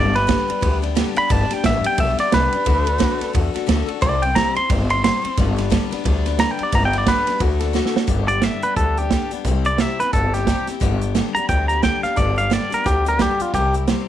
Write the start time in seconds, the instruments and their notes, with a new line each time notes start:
Already playing: upright bass G1, steel-string acoustic guitar G2 D3 G3 B3 D4 G4, clean electric guitar D5
0.14 steel-string acoustic guitar G3 B3 D4 G4, clean electric guitar B4, snare, ride
0.27 steel-string acoustic guitar G2 D3 G3 B3 D4 G4, kick, snare, ride
0.48 steel-string acoustic guitar G3 B3 D4 G4, muted upright bass stroke, ride
0.61 upright bass D2, steel-string acoustic guitar G3 B3 D4 G4, kick, ride
0.82 steel-string acoustic guitar G3 B3 D4 G4, ride
0.95 steel-string acoustic guitar G2 D3 G3 B3 D4 G4, snare, ride
1.15 steel-string acoustic guitar G3 B3 D4 G4, clean electric guitar B5, muted upright bass stroke, ride
1.29 upright bass G1, steel-string acoustic guitar G2 D3 G3 B3 D4 G4, clean electric guitar A5, kick, ride
1.51 steel-string acoustic guitar G3 B3 D4 G4, clean electric guitar G5, muted upright bass stroke, snare, ride
1.64 upright bass A1, steel-string acoustic guitar G2 D3 G3 B3 D4 G4, clean electric guitar E5, kick, snare, ride
1.84 steel-string acoustic guitar G3 B3 D4 G4, clean electric guitar G5, muted upright bass stroke, ride
1.98 upright bass B1, steel-string acoustic guitar G3 B3 D4 G4, clean electric guitar E5, kick, ride
2.18 steel-string acoustic guitar G3 B3 D4 G4, clean electric guitar D5, muted upright bass stroke, snare, ride
2.32 upright bass C2, steel-string acoustic guitar G2 D3 G3 B3 D4 G4, clean electric guitar B4, snare, ride
2.52 steel-string acoustic guitar G3 B3 D4 G4, muted upright bass stroke, ride
2.65 upright bass D2, steel-string acoustic guitar D3 A3 D4 F#4 A4, kick, ride
2.85 steel-string acoustic guitar D4 F#4 A4, ride
2.98 steel-string acoustic guitar D3 A3 D4 F#4 A4, kick, snare, ride
3.19 steel-string acoustic guitar D4 F#4 A4, muted upright bass stroke, snare, ride
3.33 upright bass E2, steel-string acoustic guitar A3 D4 F#4 A4, kick, ride
3.54 steel-string acoustic guitar D4 F#4 A4, muted upright bass stroke, snare, ride
3.67 upright bass D2, steel-string acoustic guitar D3 A3 D4 F#4 A4, snare, ride
3.86 steel-string acoustic guitar D4 F#4 A4, muted upright bass stroke, ride
4.01 upright bass C2, steel-string acoustic guitar C3 G3 C4 E4 C5, clean electric guitar D5, kick, ride
4.22 steel-string acoustic guitar C4 E4 C5, clean electric guitar G5, ride
4.35 steel-string acoustic guitar C3 G3 C4 E4 C5, clean electric guitar A#5, kick, snare, ride
4.55 steel-string acoustic guitar C4 E4 C5, clean electric guitar C6, muted upright bass stroke, ride
4.69 upright bass G1, steel-string acoustic guitar G3 C4 E4 C5, kick, ride
4.89 steel-string acoustic guitar C4 E4 C5, clean electric guitar C6, ride
5.04 steel-string acoustic guitar C3 G3 C4 E4 C5, clean electric guitar C6, snare, ride
5.22 steel-string acoustic guitar C4 E4 C5, muted upright bass stroke, ride
5.37 upright bass G1, steel-string acoustic guitar G2 D3 G3 B3 D4 B4, kick, snare, ride
5.56 steel-string acoustic guitar G3 B3 D4 B4, snare, ride
5.70 steel-string acoustic guitar G2 D3 G3 B3 D4 B4, kick, snare, ride
5.91 steel-string acoustic guitar G3 B3 D4 B4, muted upright bass stroke, snare, ride
6.04 upright bass D2, steel-string acoustic guitar G3 B3 D4 B4, kick, ride
6.25 steel-string acoustic guitar G3 B3 D4 B4, snare, ride
6.39 steel-string acoustic guitar G2 D3 G3 B3 D4 B4, clean electric guitar A#5, snare, ride
6.51 clean electric guitar G5
6.59 steel-string acoustic guitar G3 B3 D4 B4, muted upright bass stroke, ride
6.63 clean electric guitar D5
6.72 upright bass G1, steel-string acoustic guitar G2 D3 G3 B3 D4 B4, clean electric guitar A#5, kick, ride
6.85 clean electric guitar G5
6.93 steel-string acoustic guitar G3 B3 D4 B4, ride
6.98 clean electric guitar D5
7.06 steel-string acoustic guitar G2 D3 G3 B3 D4 B4, clean electric guitar B4, kick, snare, ride
7.26 steel-string acoustic guitar G3 B3 D4 B4, muted upright bass stroke, snare, ride
7.39 upright bass D2, steel-string acoustic guitar A3 D4 F#4 A4, kick, ride
7.60 steel-string acoustic guitar D4 F#4 A4, snare, ride
7.73 steel-string acoustic guitar D3 A3 D4 F#4 A4, snare
7.86 snare
7.93 steel-string acoustic guitar D4 F#4 A4, muted upright bass stroke, snare
8.07 upright bass G1, steel-string acoustic guitar G2 D3 G3 B3 D4 G4, kick, closed hi-hat
8.27 steel-string acoustic guitar G3 B3 D4 G4, clean electric guitar D5, closed hi-hat
8.42 steel-string acoustic guitar G2 D3 G3 B3 D4 G4, clean electric guitar E5, snare, closed hi-hat
8.62 steel-string acoustic guitar G3 B3 D4 G4, clean electric guitar B4, muted upright bass stroke, closed hi-hat
8.76 upright bass D2, steel-string acoustic guitar G3 B3 D4, clean electric guitar A4, kick, closed hi-hat
8.81 steel-string acoustic guitar G4
8.97 steel-string acoustic guitar B3 D4 G4, clean electric guitar G4, closed hi-hat
9.01 steel-string acoustic guitar G3
9.10 steel-string acoustic guitar G2 D3 G3 B3 D4, kick, snare, closed hi-hat
9.15 steel-string acoustic guitar G4
9.31 steel-string acoustic guitar G3 B3 D4 G4, muted upright bass stroke, closed hi-hat
9.44 upright bass C2, steel-string acoustic guitar C3 G3 C4 E4 G4, kick, closed hi-hat
9.64 steel-string acoustic guitar E4 G4, clean electric guitar D5, closed hi-hat
9.69 steel-string acoustic guitar C4
9.78 steel-string acoustic guitar C3 G3 C4 E4, clean electric guitar E5, snare, closed hi-hat
9.82 steel-string acoustic guitar G4
9.99 steel-string acoustic guitar C4 E4 G4, clean electric guitar B4, muted upright bass stroke, snare, closed hi-hat
10.13 upright bass G1, steel-string acoustic guitar G3 C4 E4, clean electric guitar A4, kick, closed hi-hat
10.18 steel-string acoustic guitar G4
10.33 steel-string acoustic guitar C4 E4 G4, clean electric guitar G4, snare, closed hi-hat
10.47 steel-string acoustic guitar C3 G3 C4 E4 G4, kick, snare, closed hi-hat
10.67 steel-string acoustic guitar C4 E4 G4, muted upright bass stroke, snare, closed hi-hat
10.80 upright bass G1, steel-string acoustic guitar G2 D3 G3 B3 D4 G4, kick, closed hi-hat
11.01 steel-string acoustic guitar G3 B3 D4 G4, closed hi-hat
11.15 steel-string acoustic guitar G2 D3 G3 B3 D4 G4, snare, closed hi-hat
11.35 steel-string acoustic guitar B3 D4 G4, clean electric guitar A#5, muted upright bass stroke, closed hi-hat
11.39 steel-string acoustic guitar G3
11.48 upright bass D2, steel-string acoustic guitar G3 B3 D4 G4, clean electric guitar G5, kick, closed hi-hat
11.68 steel-string acoustic guitar D4 G4, clean electric guitar A#5, closed hi-hat
11.72 steel-string acoustic guitar G3 B3
11.82 steel-string acoustic guitar G2 D3 G3 B3 D4 G4, clean electric guitar G5, kick, snare, closed hi-hat
12.03 steel-string acoustic guitar G3 B3 D4 G4, clean electric guitar F5, muted upright bass stroke, snare, closed hi-hat
12.16 upright bass G1, steel-string acoustic guitar G2 D3 G3 B3 D4 G4, clean electric guitar D5, kick, closed hi-hat
12.36 steel-string acoustic guitar G3 B3 D4 G4, clean electric guitar F5, closed hi-hat
12.50 steel-string acoustic guitar G2 D3 G3 B3 D4 G4, clean electric guitar D5, snare, closed hi-hat
12.70 steel-string acoustic guitar G3 B3 D4 G4, muted upright bass stroke, snare, closed hi-hat
12.74 clean electric guitar A#4
12.84 upright bass D2, steel-string acoustic guitar G3 B3 D4 G4, clean electric guitar G4, kick, snare, closed hi-hat
13.05 steel-string acoustic guitar G3 B3 D4 G4, clean electric guitar A#4, closed hi-hat
13.19 steel-string acoustic guitar G2 D3 G3 B3 D4 G4, clean electric guitar G4, kick, snare, closed hi-hat
13.39 steel-string acoustic guitar G3 B3 D4 G4, clean electric guitar F4, muted upright bass stroke, closed hi-hat
13.54 upright bass C2, steel-string acoustic guitar C3 G3 C4 E4 G4, clean electric guitar G4, kick, closed hi-hat
13.73 steel-string acoustic guitar C4 E4 G4, closed hi-hat
13.88 steel-string acoustic guitar C3 G3 C4 E4 G4, snare, closed hi-hat